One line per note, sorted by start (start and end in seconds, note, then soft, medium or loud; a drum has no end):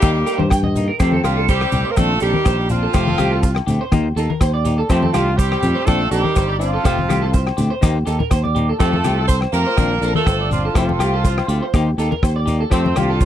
0.00 0.23 D#2 loud
0.00 0.17 D#3 medium
0.00 0.48 G3 medium
0.00 0.48 A#3 medium
0.00 0.18 A#3 medium
0.00 0.48 D#4 medium
0.00 0.18 D#4 medium
0.00 0.48 G4 medium
0.00 0.18 G4 medium
0.00 kick medium
0.00 cross-stick medium
0.00 low agogo medium
0.00 maracas medium
0.26 0.43 A#3 soft
0.26 0.42 D#4 soft
0.26 0.42 G4 soft
0.26 0.39 A#4 medium
0.26 closed hi-hat soft
0.26 maracas medium
0.38 0.89 G2 medium
0.38 0.50 C5 medium
0.38 high conga medium
0.50 0.63 G5 medium
0.50 kick medium
0.50 cross-stick medium
0.50 low agogo medium
0.50 maracas medium
0.63 0.87 D#5 medium
0.63 high conga medium
0.63 low conga medium
0.75 0.92 A#3 soft
0.75 0.91 D#4 soft
0.75 closed hi-hat soft
0.75 low conga medium
0.75 maracas medium
0.88 0.99 A#4 medium
1.00 1.20 F2 medium
1.00 1.23 C3 medium
1.00 1.15 F3 medium
1.00 1.23 A3 medium
1.00 1.15 A3 medium
1.00 1.23 C4 medium
1.00 1.16 C4 medium
1.00 1.16 G4 medium
1.00 1.12 C5 medium
1.00 kick medium
1.00 cross-stick medium
1.00 low agogo medium
1.00 maracas medium
1.12 1.24 A4 medium
1.12 high conga medium
1.24 1.64 C2 medium
1.24 1.47 F3 medium
1.24 1.40 C4 soft
1.24 1.47 D4 medium
1.24 1.47 F4 medium
1.24 1.36 G4 medium
1.24 1.40 G4 soft
1.24 cross-stick medium
1.24 closed hi-hat soft
1.24 low agogo medium
1.24 maracas medium
1.28 1.41 A3 soft
1.37 1.48 A4 medium
1.49 1.89 G3 medium
1.49 1.89 C4 medium
1.49 1.89 G4 medium
1.49 1.72 C5 medium
1.49 kick medium
1.49 maracas medium
1.61 cross-stick medium
1.61 low agogo medium
1.72 1.83 C2 medium
1.72 1.89 C4 soft
1.72 1.88 G4 soft
1.72 closed hi-hat soft
1.72 low conga medium
1.72 maracas medium
1.76 1.89 A3 soft
1.85 2.08 C5 medium
1.91 1.97 A#3 medium
1.91 1.97 A#4 medium
1.97 2.17 A#1 medium
1.97 2.12 F3 medium
1.97 2.21 A3 medium
1.97 2.13 C4 medium
1.97 2.13 D4 medium
1.97 2.22 F4 medium
1.97 2.21 A4 loud
1.97 kick medium
1.97 cross-stick medium
1.97 high conga medium
1.97 low agogo medium
1.97 maracas medium
2.20 2.32 A#1 medium
2.20 2.67 G3 medium
2.20 2.36 D4 soft
2.20 2.67 D#4 medium
2.20 2.67 G4 medium
2.20 2.33 A4 medium
2.20 closed hi-hat soft
2.20 maracas medium
2.24 2.38 C4 soft
2.33 2.45 A#4 medium
2.33 high conga medium
2.45 2.86 A#1 medium
2.45 2.57 C5 medium
2.45 kick medium
2.45 cross-stick medium
2.45 low agogo medium
2.45 maracas medium
2.58 muted clean electric guitar stroke medium
2.69 3.64 F3 medium
2.69 3.64 C4 medium
2.69 2.86 C4 soft
2.69 2.85 D4 soft
2.69 3.64 F4 medium
2.69 closed hi-hat soft
2.69 low conga medium
2.69 maracas medium
2.83 2.94 A4 medium
2.93 3.14 F1 medium
2.93 3.09 F3 medium
2.93 3.10 A3 medium
2.93 3.10 C4 medium
2.93 3.10 G4 medium
2.93 3.06 C5 medium
2.93 kick medium
2.93 cross-stick medium
2.93 low agogo medium
2.93 maracas medium
3.06 3.18 A4 medium
3.06 high conga medium
3.18 3.59 C2 medium
3.18 3.35 A3 soft
3.18 3.34 C4 soft
3.18 3.34 G4 soft
3.18 3.31 G4 medium
3.18 cross-stick medium
3.18 closed hi-hat soft
3.18 high conga medium
3.18 low agogo medium
3.18 maracas medium
3.31 3.43 A4 medium
3.43 muted clean electric guitar stroke medium
3.43 kick medium
3.43 maracas medium
3.55 cross-stick medium
3.55 low agogo medium
3.67 3.78 D2 medium
3.67 3.84 A3 soft
3.67 3.83 C4 soft
3.67 3.82 G4 medium
3.67 closed hi-hat soft
3.67 low conga medium
3.67 maracas medium
3.81 4.04 C5 medium
3.92 4.12 D#2 medium
3.92 4.07 D#3 medium
3.92 4.07 A#3 medium
3.92 4.08 D#4 medium
3.92 muted clean electric guitar stroke medium
3.92 kick medium
3.92 cross-stick medium
3.92 high conga medium
3.92 low agogo medium
3.92 maracas medium
4.16 4.27 D#2 medium
4.16 4.33 A#3 soft
4.16 4.32 D#4 soft
4.16 4.29 A4 medium
4.16 muted clean electric guitar stroke medium
4.16 closed hi-hat soft
4.16 maracas medium
4.30 4.41 A#4 medium
4.30 high conga medium
4.41 4.81 D#2 medium
4.41 4.53 C5 medium
4.41 kick medium
4.41 cross-stick medium
4.41 low agogo medium
4.41 maracas medium
4.54 4.77 D5 medium
4.65 4.81 A#3 soft
4.65 4.81 D#4 medium
4.65 4.80 G4 medium
4.65 closed hi-hat soft
4.65 low conga medium
4.65 maracas medium
4.78 4.89 A4 medium
4.89 5.10 F2 medium
4.89 5.05 F3 medium
4.89 5.05 A3 medium
4.89 5.13 A3 medium
4.89 5.13 C4 medium
4.89 5.05 C4 medium
4.89 5.06 G4 medium
4.89 5.02 C5 medium
4.89 kick medium
4.89 cross-stick medium
4.89 low agogo medium
4.89 maracas medium
5.02 5.13 A4 medium
5.02 high conga medium
5.13 5.55 C2 medium
5.13 5.36 F3 medium
5.13 5.30 C4 soft
5.13 5.37 D4 medium
5.13 5.36 F4 medium
5.13 5.26 G4 medium
5.13 5.29 G4 medium
5.13 cross-stick medium
5.13 closed hi-hat soft
5.13 high conga medium
5.13 low agogo medium
5.13 maracas medium
5.17 5.31 A3 soft
5.37 5.87 G3 medium
5.37 5.87 C4 medium
5.37 5.87 G4 medium
5.37 5.61 C5 medium
5.37 kick medium
5.37 maracas medium
5.52 cross-stick medium
5.52 low agogo medium
5.63 5.74 F2 medium
5.63 5.79 A3 soft
5.63 5.79 C4 soft
5.63 5.78 G4 soft
5.63 closed hi-hat soft
5.63 low conga medium
5.63 maracas medium
5.75 5.99 C5 medium
5.86 6.08 A#1 medium
5.86 6.02 F3 medium
5.86 6.11 A3 medium
5.86 6.03 C4 medium
5.86 6.03 D4 medium
5.86 6.12 F4 medium
5.86 6.11 A4 loud
5.86 kick medium
5.86 cross-stick medium
5.86 high conga medium
5.86 low agogo medium
5.86 maracas medium
6.11 6.22 A#1 medium
6.11 6.57 G3 medium
6.11 6.28 C4 soft
6.11 6.26 D4 medium
6.11 6.57 D#4 medium
6.11 6.57 G4 medium
6.11 6.23 A4 medium
6.11 closed hi-hat soft
6.11 maracas medium
6.23 6.35 A#4 medium
6.23 high conga medium
6.36 6.77 G1 medium
6.36 6.48 C5 medium
6.36 kick medium
6.36 cross-stick medium
6.36 low agogo medium
6.36 maracas medium
6.48 6.72 D5 medium
6.59 7.53 F3 medium
6.59 7.54 C4 medium
6.59 6.77 C4 soft
6.59 6.75 D4 soft
6.59 7.53 F4 medium
6.59 closed hi-hat soft
6.59 maracas medium
6.73 6.84 A4 medium
6.84 7.05 F1 medium
6.84 6.99 F3 medium
6.84 7.00 A3 medium
6.84 7.01 G4 medium
6.84 6.97 C5 medium
6.84 muted clean electric guitar stroke medium
6.84 kick medium
6.84 cross-stick medium
6.84 low agogo medium
6.84 maracas medium
6.98 high conga medium
7.09 7.50 C2 medium
7.09 7.25 A3 soft
7.09 7.25 C4 soft
7.09 7.21 G4 medium
7.09 7.24 G4 soft
7.09 cross-stick medium
7.09 closed hi-hat soft
7.09 high conga soft
7.09 low agogo medium
7.09 maracas medium
7.22 7.33 A4 medium
7.34 7.57 C5 medium
7.34 kick medium
7.34 maracas medium
7.47 cross-stick medium
7.47 low agogo medium
7.57 7.69 D2 medium
7.57 7.74 A3 soft
7.57 7.74 C4 soft
7.57 7.73 G4 soft
7.57 closed hi-hat soft
7.57 low conga medium
7.57 maracas medium
7.70 7.94 C5 medium
7.81 8.03 D#2 medium
7.81 7.97 D#3 medium
7.81 7.97 A#3 medium
7.81 7.98 D#4 medium
7.81 7.98 G4 medium
7.81 kick medium
7.81 cross-stick medium
7.81 high conga soft
7.81 low agogo medium
7.81 maracas medium
8.06 8.18 D#2 medium
8.06 8.23 A#3 soft
8.06 8.22 D#4 medium
8.06 8.21 G4 soft
8.06 8.19 A4 medium
8.06 closed hi-hat soft
8.06 maracas medium
8.19 8.30 A#4 medium
8.19 high conga medium
8.19 low conga medium
8.31 8.72 D#2 medium
8.31 8.43 C5 medium
8.31 kick medium
8.31 cross-stick medium
8.31 low agogo medium
8.31 maracas medium
8.44 8.67 D5 medium
8.44 high conga medium
8.55 8.72 A#3 soft
8.55 8.71 D#4 soft
8.55 8.70 G4 medium
8.55 closed hi-hat soft
8.55 low conga medium
8.69 8.79 A4 medium
8.79 9.01 F2 medium
8.79 8.95 F3 medium
8.79 9.26 A3 medium
8.79 8.96 A3 medium
8.79 8.96 C4 medium
8.79 9.26 F4 medium
8.79 8.96 G4 medium
8.79 9.26 A4 medium
8.79 8.92 C5 medium
8.79 kick medium
8.79 cross-stick medium
8.79 low agogo medium
8.79 maracas medium
8.93 9.04 A4 medium
8.93 high conga medium
9.04 9.45 C2 medium
9.04 9.21 A3 soft
9.04 9.21 C4 soft
9.04 9.16 G4 medium
9.04 9.20 G4 soft
9.04 cross-stick medium
9.04 closed hi-hat soft
9.04 high conga medium
9.04 low agogo medium
9.04 maracas medium
9.18 9.28 A4 medium
9.27 9.39 C4 medium
9.27 9.39 A4 medium
9.27 9.39 C5 medium
9.27 9.52 C5 medium
9.27 kick medium
9.27 maracas medium
9.41 cross-stick medium
9.41 low agogo medium
9.52 9.64 F2 medium
9.52 9.70 A3 soft
9.52 10.11 A#3 medium
9.52 9.69 C4 soft
9.52 10.11 F4 medium
9.52 9.68 G4 soft
9.52 10.11 A#4 loud
9.52 closed hi-hat soft
9.52 maracas medium
9.66 9.90 C5 medium
9.77 9.98 A#1 medium
9.77 9.93 F3 medium
9.77 9.93 C4 medium
9.77 9.94 D4 medium
9.77 kick medium
9.77 cross-stick medium
9.77 high conga medium
9.77 low agogo medium
9.77 maracas medium
10.01 10.13 A#1 medium
10.01 10.19 C4 soft
10.01 10.17 D4 soft
10.01 10.15 A4 medium
10.01 closed hi-hat soft
10.01 maracas medium
10.15 10.52 A3 medium
10.15 10.51 F4 medium
10.15 10.52 A4 medium
10.15 10.27 A#4 medium
10.15 high conga medium
10.26 10.67 G1 medium
10.26 10.39 C5 medium
10.26 kick medium
10.26 cross-stick medium
10.26 low agogo medium
10.26 maracas medium
10.40 10.63 D5 medium
10.50 10.75 F3 medium
10.50 10.68 C4 soft
10.50 10.66 D4 soft
10.50 10.75 D4 medium
10.50 10.75 F4 medium
10.50 closed hi-hat soft
10.50 low conga medium
10.50 maracas medium
10.65 10.76 A4 medium
10.74 10.96 F1 medium
10.74 10.90 F3 medium
10.74 11.71 F3 medium
10.74 10.91 A3 medium
10.74 10.91 C4 medium
10.74 11.71 C4 medium
10.74 11.71 F4 medium
10.74 10.91 G4 medium
10.74 10.88 C5 medium
10.74 kick medium
10.74 cross-stick medium
10.74 low agogo medium
10.74 maracas medium
10.89 11.00 A4 medium
10.89 high conga medium
10.99 11.40 C2 medium
10.99 11.17 A3 soft
10.99 11.16 C4 soft
10.99 11.15 G4 medium
10.99 11.13 G4 medium
10.99 cross-stick medium
10.99 closed hi-hat soft
10.99 low agogo medium
10.99 maracas medium
11.14 11.25 A4 medium
11.25 11.48 C5 medium
11.25 kick medium
11.25 maracas medium
11.38 cross-stick medium
11.38 low agogo medium
11.48 11.59 D2 medium
11.48 11.66 A3 soft
11.48 11.65 C4 soft
11.48 11.64 G4 medium
11.48 closed hi-hat soft
11.48 maracas medium
11.63 11.86 C5 medium
11.74 11.94 D#2 medium
11.74 11.89 D#3 medium
11.74 11.89 A#3 medium
11.74 11.90 D#4 medium
11.74 11.90 G4 medium
11.74 kick medium
11.74 cross-stick medium
11.74 high conga medium
11.74 low agogo medium
11.74 maracas medium
11.98 12.09 D#2 medium
11.98 12.15 A#3 soft
11.98 12.14 D#4 medium
11.98 12.14 G4 soft
11.98 12.11 A4 medium
11.98 closed hi-hat soft
11.98 maracas medium
12.11 12.22 A#4 medium
12.11 high conga medium
12.23 12.64 D#2 medium
12.23 12.35 C5 medium
12.23 kick medium
12.23 cross-stick medium
12.23 low agogo medium
12.23 maracas medium
12.36 12.59 D5 medium
12.46 12.63 A#3 soft
12.46 12.63 D#4 medium
12.46 12.62 G4 medium
12.46 closed hi-hat soft
12.46 low conga medium
12.46 maracas medium
12.60 12.71 A4 medium
12.70 12.92 F2 medium
12.70 12.86 F3 medium
12.70 12.87 A3 medium
12.70 12.96 A3 medium
12.70 12.87 C4 medium
12.70 12.95 C4 medium
12.70 12.87 G4 medium
12.70 12.84 C5 medium
12.70 kick medium
12.70 cross-stick medium
12.70 low agogo medium
12.70 maracas medium
12.85 12.96 C5 medium
12.85 high conga medium
12.95 13.25 C2 medium
12.95 13.25 F3 medium
12.95 13.12 A3 soft
12.95 13.12 C4 soft
12.95 13.25 D4 medium
12.95 13.25 F4 medium
12.95 13.11 G4 soft
12.95 13.09 G4 medium
12.95 cross-stick medium
12.95 closed hi-hat soft
12.95 high conga medium
12.95 low agogo medium
12.95 maracas medium
13.10 13.21 A4 medium
13.21 13.25 C5 medium
13.21 kick medium
13.21 maracas medium